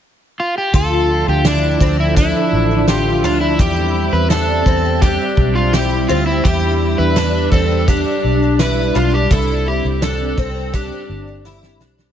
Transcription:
0.40 F4
0.58 G4
0.73 D2 D3 F3 D4 F4 A4 E5, kick, closed hi-hat
1.28 D2 G4
1.45 D4 E4, snare, closed hi-hat
1.81 D2 C4, kick
2.00 E4
2.17 D4 E4, kick, closed hi-hat
2.53 A1
2.88 F4 G4, snare, closed hi-hat
3.24 D2 D4 F4
3.41 E4
3.59 E2 G3 C4 E4 G4, kick, closed hi-hat
4.12 E2 B4
4.30 D4 A4, snare, closed hi-hat
4.66 E2 C4, kick
5.02 D4 G4, kick, closed hi-hat
5.37 B1, kick
5.55 F4
5.73 E4 G4, snare, closed hi-hat
6.08 D2 C4 F4
6.27 E4
6.44 E2 D4 E4 G4, kick, closed hi-hat
6.98 E2 B4
7.16 D4, snare, closed hi-hat
7.52 E2 C4 A4, kick
7.88 D4 G4, kick, closed hi-hat
8.24 B1
8.59 E4 B4, snare, closed hi-hat
8.95 B1 D4 F4
9.14 G4
9.30 C2 C4 E4 A4, kick, closed hi-hat
9.68 G4
9.84 C2
10.02 D4 A4, snare, closed hi-hat
10.38 C2 C4, kick
10.74 D4 G4, kick, closed hi-hat
11.09 G1
11.45 E4, snare
11.63 snare
11.80 B1 D4, snare
11.98 snare

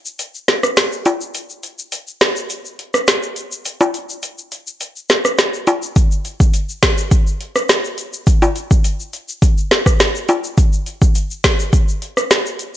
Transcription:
0.06 shaker
0.19 closed hi-hat, shaker
0.35 shaker
0.48 snare, closed hi-hat
0.63 cross-stick, shaker
0.77 finger snap, snare, closed hi-hat, shaker
0.92 shaker
1.05 closed hi-hat, high timbale, shaker
1.21 shaker
1.34 closed hi-hat, shaker
1.50 shaker
1.63 closed hi-hat, shaker
1.79 shaker
1.92 closed hi-hat, shaker
2.08 shaker
2.21 finger snap, snare, closed hi-hat, shaker
2.36 shaker
2.50 closed hi-hat, shaker
2.65 shaker
2.79 closed hi-hat
2.94 cross-stick, shaker
3.08 finger snap, snare, closed hi-hat, shaker
3.23 shaker
3.36 closed hi-hat, shaker
3.52 shaker
3.65 closed hi-hat, shaker
3.81 high timbale, shaker
3.94 closed hi-hat, shaker
4.10 shaker
4.23 closed hi-hat, shaker
4.38 shaker
4.52 closed hi-hat, shaker
4.67 shaker
4.81 closed hi-hat, shaker
4.96 shaker
5.09 snare, closed hi-hat, shaker
5.25 cross-stick, shaker
5.38 finger snap, snare, closed hi-hat, shaker
5.54 shaker
5.67 closed hi-hat, high timbale, shaker
5.82 shaker
5.96 kick, closed hi-hat, shaker
6.11 shaker
6.25 closed hi-hat, shaker
6.40 kick, shaker
6.54 closed hi-hat, shaker
6.69 shaker
6.83 finger snap, kick, snare, closed hi-hat, shaker
6.98 shaker
7.11 kick, closed hi-hat, shaker
7.27 shaker
7.41 closed hi-hat
7.56 cross-stick, shaker
7.69 finger snap, snare, closed hi-hat, shaker
7.84 shaker
7.98 closed hi-hat, shaker
8.13 shaker
8.27 kick, closed hi-hat, shaker
8.42 high timbale, shaker
8.56 closed hi-hat, shaker
8.71 kick, shaker
8.84 closed hi-hat, shaker
9.00 shaker
9.13 closed hi-hat, shaker
9.29 shaker
9.42 kick, closed hi-hat, shaker
9.58 shaker
9.71 snare, closed hi-hat
9.86 kick, cross-stick, shaker
10.00 finger snap, snare, closed hi-hat, shaker
10.15 shaker
10.29 closed hi-hat, high timbale, shaker
10.44 shaker
10.58 kick, closed hi-hat, shaker
10.73 shaker
10.86 closed hi-hat, shaker
11.02 kick, shaker
11.15 closed hi-hat, shaker
11.31 shaker
11.44 finger snap, kick, snare, closed hi-hat, shaker
11.59 shaker
11.73 kick, closed hi-hat, shaker
11.88 shaker
12.02 closed hi-hat
12.17 cross-stick, shaker
12.31 finger snap, snare, closed hi-hat, shaker
12.46 shaker
12.59 closed hi-hat, shaker

